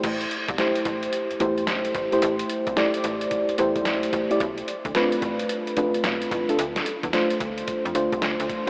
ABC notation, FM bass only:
X:1
M:4/4
L:1/16
Q:"Swing 16ths" 1/4=110
K:Am
V:1 name="FM bass" clef=bass
A,,,2 z C,, z2 A,,,2 z E,, E,,2 C,,2 A,,, z | A,,,2 z C,, z2 A,,,2 z E,, E,,2 C,,2 A,,, z | B,,,2 z D,, z2 A,,,2 z F,,, F,,,2 B,,,2 A,,, z | D,,2 z E,, z2 D,,2 z F,, D,, C,, D,, D,, z2 |]